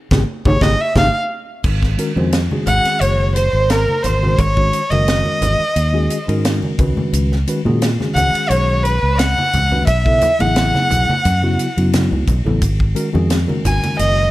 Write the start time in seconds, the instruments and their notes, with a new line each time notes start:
0.11 fingered electric bass G#1, tine electric piano D#4 G4 G#4, kick, snare, high conga
0.45 fingered electric bass G#1, tine electric piano D#4 G4 G#4, violin C#5, kick, high conga
0.61 fingered electric bass G#1, tine electric piano D#4 G4 G#4, violin D#5, kick, snare, high conga
0.81 violin E5
0.95 fingered electric bass G#1, tine electric piano D#4 G4 G#4, violin F5, kick, snare, high conga
1.64 fingered electric bass G#1, kick, crash
1.83 kick, snare
1.98 tine electric piano D#3 G#3 C#4 F#4 A#4, hi-hat pedal, ride
2.16 fingered electric bass F2, tine electric piano D#3 G#3 C#4 F#4 C5, high conga
2.32 snare, hi-hat pedal, ride
2.51 tine electric piano D#3 G#3 C#4 F#4 G#4, high conga
2.67 fingered electric bass G#1, violin F#5, overdriven electric guitar F#5, hi-hat pedal, ride, low conga
2.85 snare, ride
3.01 fingered electric bass F#1, violin C#5, overdriven electric guitar C#5, hi-hat pedal, ride
3.35 violin C5, overdriven electric guitar C5, hi-hat pedal, ride
3.53 fingered electric bass G#1
3.70 violin A#4, overdriven electric guitar A#4, snare, hi-hat pedal, ride
3.88 high conga
4.03 fingered electric bass G#1, violin C5, overdriven electric guitar C5, hi-hat pedal, ride, low conga
4.22 tine electric piano D#3 G#3 C#4 F#4 A#4, high conga
4.38 fingered electric bass G#1, violin C#5, overdriven electric guitar C#5, kick, hi-hat pedal, ride
4.56 tine electric piano D#3 G#3 C#4 F#4 C#5, kick
4.73 hi-hat pedal, ride
4.90 fingered electric bass F#1, tine electric piano D#3 G#3 C#4 F#4 A#4, violin D#5, overdriven electric guitar D#5, ride, high conga
5.08 snare, hi-hat pedal, ride
5.26 high conga
5.41 fingered electric bass G#1, hi-hat pedal, ride, low conga
5.60 muted fingered electric bass stroke
5.76 fingered electric bass D#2, hi-hat pedal, ride
5.93 tine electric piano D#3 G#3 C#4 F#4 G#4
6.10 hi-hat pedal, ride
6.27 fingered electric bass G#2, tine electric piano D#3 G#3 C#4 F#4 A#4, ride
6.45 snare, hi-hat pedal, ride
6.63 high conga
6.78 fingered electric bass C#2, tine electric piano D#3 G#3 C#4 F#4 B4, kick, hi-hat pedal, ride, low conga
6.97 high conga
7.13 fingered electric bass C#2, hi-hat pedal, ride
7.32 snare
7.47 tine electric piano D#3 G#3 C#4 F#4 B4, hi-hat pedal, ride
7.64 fingered electric bass A#2, tine electric piano D#3 G#3 C#4 F#4 G#4, high conga
7.82 snare, hi-hat pedal, ride
7.99 tine electric piano D#3 G#3 C#4 F#4 G#4, snare, high conga
8.15 fingered electric bass C#2, violin F#5, overdriven electric guitar F#5, hi-hat pedal, ride, low conga
8.35 muted fingered electric bass stroke, ride
8.49 fingered electric bass B1, violin C#5, overdriven electric guitar C#5, hi-hat pedal, ride
8.83 violin B4, overdriven electric guitar B4, hi-hat pedal, ride
9.03 fingered electric bass C#2
9.18 violin F#5, overdriven electric guitar F#5, snare, hi-hat pedal, ride
9.38 high conga
9.53 fingered electric bass C#2, hi-hat pedal, ride, low conga
9.71 tine electric piano D#3 G#3 C#4 F#4 B4, high conga
9.87 fingered electric bass B1, violin E5, overdriven electric guitar E5, kick, hi-hat pedal, ride
10.04 tine electric piano C#3 F#3 B3 E4 A4, kick
10.21 hi-hat pedal, ride, low conga
10.39 fingered electric bass A1, tine electric piano C#3 F#3 B3 E4 G#4, violin F#5, overdriven electric guitar F#5, ride, high conga
10.56 snare, hi-hat pedal, ride
10.75 snare, high conga
10.90 fingered electric bass B1, hi-hat pedal, ride, low conga
11.10 high conga
11.25 fingered electric bass F#2, hi-hat pedal, ride, low conga
11.42 tine electric piano C#3 F#3 B3 E4 F#4
11.59 hi-hat pedal, ride
11.77 fingered electric bass F#2, tine electric piano C#3 F#3 B3 E4 F#4, ride
11.93 snare, hi-hat pedal, ride, high conga
12.12 fingered electric bass C#2, high conga
12.27 fingered electric bass B1, kick, hi-hat pedal, ride, low conga
12.44 fingered electric bass A1, tine electric piano C#3 F#3 B3 E4 A4, low conga
12.62 fingered electric bass G#1, kick, hi-hat pedal, ride
12.80 kick
12.94 tine electric piano D#3 G#3 C#4 F#4 A#4, hi-hat pedal, ride
13.12 fingered electric bass F2, tine electric piano D#3 G#3 C#4 F#4 G#4, high conga
13.30 snare, hi-hat pedal, ride
13.47 tine electric piano D#3 G#3 C#4 F#4 A#4, high conga
13.65 fingered electric bass G#1, violin G#5, overdriven electric guitar G#5, hi-hat pedal, ride, low conga
13.83 ride, high conga
13.99 fingered electric bass F#1, violin D#5, overdriven electric guitar D#5, hi-hat pedal, ride